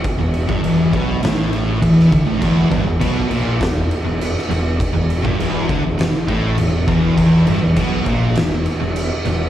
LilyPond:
<<
  \new Staff \with { instrumentName = "Distorted electric guitar" } { \clef bass \time 4/4 \key e \minor \tempo 4 = 101 r16 e,8 g,16 e,8 b,8 a,4 e8 d16 a,16 | e,8 g,16 e,16 b,8 ais,8 e,8 r16 e,8 r16 e,8 | r16 e,8 g,16 e,8 d16 e,16 e,8 a,8 e,8 e,8 | e,8 g,16 e,16 b,8 ais,8 e,8 r16 e,8 r16 e,8 | }
  \new Staff \with { instrumentName = "Distorted electric guitar" } { \clef bass \time 4/4 \key e \minor r16 e,8 g,16 e,8 b,8 a,4 e8 d16 a,16 | e,8 g,16 e,16 b,8 ais,8 e,8 r16 e,8 r16 e,8 | r16 e,8 g,16 e,8 d16 e,16 e,8 a,8 e,8 e,8 | e,8 g,16 e,16 b,8 ais,8 e,8 r16 e,8 r16 e,8 | }
  \new Staff \with { instrumentName = "Distorted electric guitar" } { \clef bass \time 4/4 \key e \minor r1 | e,8 g,16 e,16 b,8 ais,8 e,8 r16 e,8 r16 e,8 | r16 e,8 g,16 e,8 d16 e,16 e,8 a,8 e,8 e,8 | e,8 g,16 e,16 b,8 ais,8 e,8 r16 e,8 r16 e,8 | }
  \new Staff \with { instrumentName = "Fingered electric bass" } { \clef bass \time 4/4 \key e \minor r16 e,,8 g,,16 e,,8 b,,8 a,,4 e,8 d,16 a,,16 | e,,8 g,,16 e,,16 b,,8 ais,,8 e,,8 r16 e,,8 r16 e,,8 | r16 e,,8 g,,16 e,,8 d,16 e,,16 e,,8 a,,8 e,,8 e,,8 | e,,8 g,,16 e,,16 b,,8 ais,,8 e,,8 r16 e,,8 r16 e,,8 | }
  \new DrumStaff \with { instrumentName = "Drums" } \drummode { \time 4/4 <cymc bd>8 cymc16 bd16 cymc8 <cymc bd>8 <cymc sn>8 cymc8 <cymc bd>16 sn16 <cymc bd>8 | <cymc bd>8 <cymc bd>8 <cymc bd>8 cymc8 <cymc bd sn>8 cymc8 cymc16 sn16 cymc8 | <cymc bd>8 cymc16 bd16 cymc8 <cymc bd>8 <cymc sn>8 <cymc bd>8 cymc8 <cymc bd>8 | <cymc bd>8 cymc8 <cymc bd>8 <cymc bd>8 <cymc sn>8 cymc8 cymc8 cymc8 | }
>>